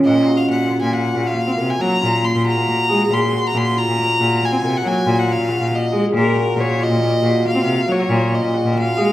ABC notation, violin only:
X:1
M:7/4
L:1/16
Q:1/4=138
K:Ebdor
V:1 name="Violin"
e3 f g3 a g3 f4 a b4 c'2 b6 | c'3 b c'2 b6 a3 g a3 g f4 e3 z | B4 d2 e6 f4 d4 e4 f4 |]